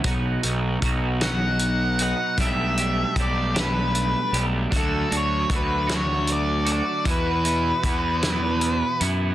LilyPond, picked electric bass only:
\new Staff \with { instrumentName = "Picked electric bass" } { \clef bass \time 6/8 \key d \lydian \tempo 4. = 51 b,,8 b,,8 b,,2 | b,,4 b,,4. b,,8 | d,8 d,8 d,2 | e,4 e,4. fis,8 | }